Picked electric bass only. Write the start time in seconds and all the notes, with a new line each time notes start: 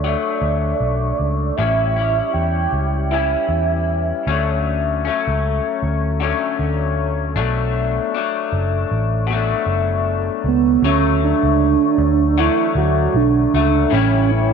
Already playing: D2
0.42 D2
0.80 B1
1.19 C#2
1.58 A1
2.34 E2
2.72 C#2
3.49 E2
4.27 D2
5.27 C#2
5.83 D2
6.59 D2
7.36 B1
8.53 F#1
8.91 A1
9.66 F#1
10.44 C#2
10.82 D2
11.43 C#2
11.98 D2
12.75 D2
13.14 B1
13.54 C#2
13.92 A1